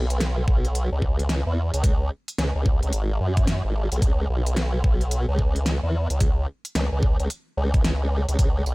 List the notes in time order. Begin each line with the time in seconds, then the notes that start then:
Already playing: B1
0.10 closed hi-hat
0.20 snare, closed hi-hat
0.48 B1, kick
0.65 closed hi-hat
0.75 closed hi-hat
0.92 C#2
1.02 kick
1.19 closed hi-hat
1.29 snare, closed hi-hat
1.47 E2
1.74 C#2, closed hi-hat
1.84 kick, closed hi-hat
2.28 closed hi-hat
2.38 C#2, snare, closed hi-hat
2.56 C#2
2.66 kick
2.83 C#2, closed hi-hat
2.93 G#1, closed hi-hat
3.21 F#2
3.37 kick, closed hi-hat
3.47 snare, closed hi-hat
3.65 G#1
3.92 B1, closed hi-hat
4.02 C#2, kick, closed hi-hat
4.30 B1
4.46 closed hi-hat
4.56 snare, closed hi-hat
4.84 B1, kick
5.01 closed hi-hat
5.11 closed hi-hat
5.28 C#2
5.39 kick
5.56 closed hi-hat
5.66 snare, closed hi-hat
5.83 E2
6.10 C#2, closed hi-hat
6.20 kick, closed hi-hat
6.65 closed hi-hat
6.75 C#2, snare, closed hi-hat
6.92 C#2
7.03 kick
7.20 C#2, closed hi-hat
7.30 closed hi-hat
7.57 C#2
7.74 kick, closed hi-hat
7.84 C#2, snare, closed hi-hat
8.29 C#2, closed hi-hat
8.39 C#2, kick, closed hi-hat
8.66 B1, tambourine